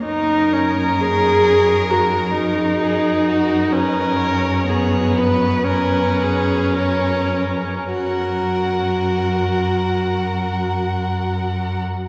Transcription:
<<
  \new Staff \with { instrumentName = "Violin" } { \time 4/4 \key fis \major \tempo 4 = 59 ais'4 cis''4 ais'4 ais'4 | b'8 cis''8 cis''8 b'4. ais'8. r16 | fis''1 | }
  \new Staff \with { instrumentName = "Violin" } { \time 4/4 \key fis \major ais'2. gis'8 fis'8 | ais'4 gis'8 b'8 ais'8 gis'8 cis''8 r8 | ais'1 | }
  \new Staff \with { instrumentName = "Viola" } { \time 4/4 \key fis \major dis'8 cis'8 gis'4 fis'8 dis'4. | cis'4 b4 cis'2 | fis'1 | }
  \new Staff \with { instrumentName = "Cello" } { \clef bass \time 4/4 \key fis \major fis,1 | fis,2.~ fis,8. r16 | fis,1 | }
>>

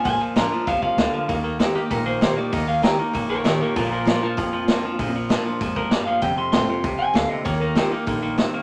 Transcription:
<<
  \new Staff \with { instrumentName = "Clean electric guitar" } { \time 4/4 \key bes \mixolydian \tempo 4 = 195 aes''8 r8 bes''4 f''8 f''4.~ | f''8 r4 g'8 bes'8 c''4 d''8 | ees''8 f''8 bes''4 r8 <bes' des''>8 <bes' des''>8 <bes' des''>8 | <f' bes'>8 <f' bes'>8 <f' bes'>8 f'2~ f'8~ |
f'8 r2 bes'8 d''8 f''8 | g''8 c'''8 c'''4 r8 aes''8 f''8 ees''8 | des''8 bes'8 f'8 ees'2 r8 | }
  \new Staff \with { instrumentName = "Steel-string acoustic guitar" } { \time 4/4 \key bes \mixolydian << { r4 <f bes d' f'>8 <d' f'>8 r2 | r4 <ees bes ees' g'>8 <ees' g'>8 r4 <ees bes ees' g'>8 <ees' g'>8 | r4 <ees bes ees' g'>8 <ees' g'>8 r4 <ees bes ees' g'>8 <ees' g'>8 | r4 <f bes d' f'>8 <d' f'>8 r4 <f bes d' f'>8 <d' f'>8 |
r4 <f bes d' f'>8 <d' f'>8 r2 | r4 <f a c' f'>8 <c' f'>8 r2 | r4 <ees bes ees' g'>8 <ees' g'>8 r2 | } \\ { bes,2 c4 d4 | ees2 bes,2 | ees2 bes,2 | bes,2 f,2 |
bes,2 aes,4 g,4 | f,2 c4 d4 | ees2 d4 c4 | } >> }
  \new Staff \with { instrumentName = "Clean electric guitar" } { \clef bass \time 4/4 \key bes \mixolydian <bes, f>8 <bes, f>8 <bes, g>8 <bes, f>8 <bes, f>8 <bes, f>8 <bes, g>8 <bes, f>8 | <ees bes>8 <ees bes>8 <ees c'>8 <ees bes>8 <ees bes>8 <ees bes>8 <ees c'>8 <ees bes>8 | <ees bes>8 <ees bes>8 <ees c'>8 <ees bes>8 <ees bes>8 <ees bes>8 <ees c'>8 <ees bes>8 | <bes, f>8 <bes, f>8 <bes, g>8 <bes, f>8 <bes, f>8 <bes, f>8 <bes, g>8 <bes, f>8 |
<bes, f>8 <bes, f>8 <bes, g>8 <bes, f>8 <bes, f>8 <bes, f>8 <bes, g>8 <bes, f>8 | <f, c>8 <f, c>8 <f, d>8 <f, c>8 <f, c>8 <f, c>8 <f, d>8 <f, c>8 | <ees bes>8 <ees bes>8 <ees c'>8 <ees bes>8 <ees bes>8 <ees bes>8 <ees c'>8 <ees bes>8 | }
  \new Staff \with { instrumentName = "Upright bass" } { \clef bass \time 4/4 \key bes \mixolydian bes,,8 r8 bes,,8 r8 c,8 r8 d,8 r8 | ees,4. r8 bes,,4. r8 | ees,4. r8 bes,,4. r8 | bes,,4. r8 f,4. r8 |
bes,,4. r8 f,4. r8 | f,,8 r8 bes,,8 r8 c,8 r8 d,8 r8 | ees,4. r8 bes,,4. r8 | }
  \new DrumStaff \with { instrumentName = "Drums" } \drummode { \time 4/4 <hho bd>4 <hho sn>4 <hho bd>8 bd8 <hho sn>4 | <hho bd>4 <hho sn>4 <hho bd>4 <hho sn>4 | <hho bd>4 <hho sn>4 <hho bd>4 <hho sn>4 | <hho bd>4 <hho sn>4 <hho bd>4 <hho sn>4 |
<hho bd>4 <hho sn>4 <hho bd>8 bd8 <hho sn>4 | <hho bd>4 <hho sn>4 <hho bd>4 <hho sn>4 | <hho bd>4 <hho sn>4 <hho bd>4 <hho sn>4 | }
>>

